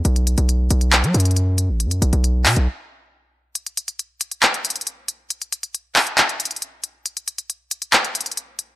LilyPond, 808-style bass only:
\new Staff \with { instrumentName = "808-style bass" } { \clef bass \time 4/4 \key b \phrygian \tempo 4 = 137 b,,8. b,,8. b,,8. fis16 fis,4~ fis,16 a,,16~ | a,,32 fis,16. b,,16 b,,8. b,16 b,,16 r2 | r1 | r1 |
r1 | }